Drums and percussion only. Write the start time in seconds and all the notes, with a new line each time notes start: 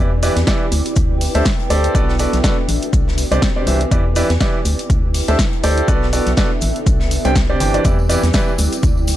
0.23 open hi-hat, shaker
0.36 snare, closed hi-hat
0.47 kick, snare, closed hi-hat, shaker
0.72 open hi-hat, shaker
0.86 closed hi-hat
0.96 kick, closed hi-hat, shaker
1.21 open hi-hat
1.35 closed hi-hat
1.45 kick, snare, closed hi-hat, shaker
1.59 closed hi-hat
1.70 snare, open hi-hat, shaker
1.84 closed hi-hat
1.95 kick, closed hi-hat, shaker
2.09 snare
2.19 open hi-hat, shaker
2.33 snare, closed hi-hat
2.44 kick, snare, closed hi-hat, shaker
2.69 open hi-hat, shaker
2.83 closed hi-hat
2.93 kick, closed hi-hat, shaker
3.08 snare
3.18 open hi-hat, shaker
3.32 closed hi-hat
3.42 kick, snare, closed hi-hat, shaker
3.67 open hi-hat, shaker
3.81 closed hi-hat
3.91 kick, closed hi-hat, shaker
4.15 open hi-hat, shaker
4.29 snare, closed hi-hat
4.40 kick, snare, closed hi-hat, shaker
4.65 open hi-hat, shaker
4.79 closed hi-hat
4.90 kick, closed hi-hat, shaker
5.14 open hi-hat
5.28 closed hi-hat
5.39 kick, snare, closed hi-hat, shaker
5.53 closed hi-hat
5.63 snare, open hi-hat, shaker
5.78 closed hi-hat
5.88 kick, closed hi-hat, shaker
6.02 snare
6.13 open hi-hat, shaker
6.26 snare, closed hi-hat
6.37 kick, snare, closed hi-hat, shaker
6.61 open hi-hat, shaker
6.76 closed hi-hat
6.87 kick, closed hi-hat, shaker
7.00 snare
7.11 open hi-hat, shaker
7.25 closed hi-hat
7.36 kick, snare, closed hi-hat, shaker
7.60 open hi-hat, shaker
7.74 closed hi-hat
7.85 kick, closed hi-hat, tambourine, high conga, shaker
7.99 tambourine
8.10 open hi-hat, tambourine, shaker
8.23 snare, closed hi-hat, tambourine, high conga, shaker
8.34 kick, snare, closed hi-hat, tambourine, shaker
8.48 tambourine
8.58 open hi-hat, tambourine, high conga, shaker
8.72 closed hi-hat, tambourine, shaker
8.83 kick, closed hi-hat, tambourine, shaker
8.97 tambourine
9.07 open hi-hat, tambourine, high conga, shaker